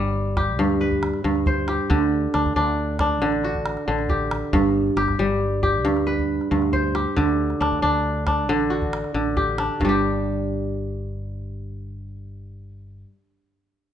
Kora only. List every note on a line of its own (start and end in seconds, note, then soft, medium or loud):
0.00 0.58 G2 medium
0.00 1.95 G3 medium
0.00 0.72 D4 medium
0.00 0.24 G4 medium
0.37 1.68 G4 medium
0.59 1.23 G2 medium
0.81 1.53 B4 medium
1.24 1.95 G2 medium
1.47 2.66 C5 medium
1.69 3.10 G4 medium
1.90 3.20 D3 medium
2.34 2.56 D4 medium
2.56 3.00 D4 medium
3.00 4.68 D4 medium
3.22 3.86 D3 medium
3.44 4.16 F#4 medium
3.88 4.59 D3 medium
4.10 4.97 G4 medium
4.53 5.83 G2 medium
4.97 5.63 G4 medium
5.19 7.22 G3 medium
5.63 6.94 G4 medium
5.85 6.50 G2 medium
6.07 6.79 B4 medium
6.51 7.22 G2 medium
6.73 7.92 C5 medium
6.95 8.36 G4 medium
7.16 8.48 D3 medium
7.61 7.82 D4 medium
7.82 8.27 D4 medium
8.27 9.58 D4 medium
8.49 9.13 D3 medium
8.70 9.43 F#4 medium
9.14 9.86 D3 medium
9.37 9.88 G4 medium
9.59 11.27 D4 medium
9.81 13.08 G2 medium
9.85 13.12 G3 medium
9.89 13.16 G4 medium